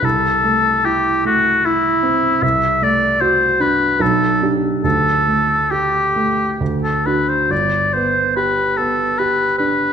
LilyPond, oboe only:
\new Staff \with { instrumentName = "Oboe" } { \time 3/4 \key g \major \tempo 4 = 73 a'4 g'8 fis'8 e'4 | e''8 d''8 c''8 b'8 a'8. r16 | a'4 g'4 r16 a'16 b'16 c''16 | d''8 c''8 b'8 a'8 b'8 b'8 | }